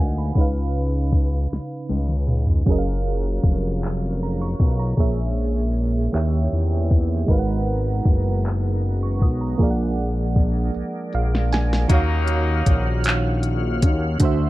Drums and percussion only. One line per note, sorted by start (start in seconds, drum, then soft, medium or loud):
0.35 kick medium
0.35 closed hi-hat medium
0.73 closed hi-hat soft
1.12 kick loud
1.12 closed hi-hat medium
1.50 snare medium
1.50 closed hi-hat medium
1.89 closed hi-hat soft
1.89 high tom medium
2.09 mid tom medium
2.28 closed hi-hat medium
2.28 mid tom medium
2.47 floor tom medium
2.66 kick loud
2.66 closed hi-hat medium
3.04 closed hi-hat soft
3.43 kick loud
3.43 closed hi-hat medium
3.82 clap loud
3.82 closed hi-hat medium
4.20 closed hi-hat soft
4.60 kick loud
4.60 closed hi-hat medium
4.97 kick medium
4.97 closed hi-hat medium
5.35 closed hi-hat soft
5.74 closed hi-hat medium
6.12 clap loud
6.12 closed hi-hat medium
6.51 closed hi-hat soft
6.91 kick medium
6.91 closed hi-hat medium
7.28 kick loud
7.28 closed hi-hat medium
7.66 closed hi-hat soft
8.05 kick loud
8.05 closed hi-hat medium
8.43 clap loud
8.43 closed hi-hat medium
8.82 closed hi-hat soft
9.22 kick loud
9.22 closed hi-hat medium
9.59 kick loud
9.59 closed hi-hat medium
9.97 closed hi-hat soft
10.36 kick loud
10.36 closed hi-hat medium
10.74 closed hi-hat medium
11.13 closed hi-hat soft
11.35 snare medium
11.53 snare medium
11.53 closed hi-hat medium
11.73 snare medium
11.90 kick loud
11.90 closed hi-hat medium
12.27 closed hi-hat medium
12.66 kick loud
12.66 closed hi-hat medium
13.04 clap loud
13.04 closed hi-hat medium
13.43 closed hi-hat medium
13.82 kick medium
13.82 closed hi-hat medium
14.20 kick loud
14.20 closed hi-hat medium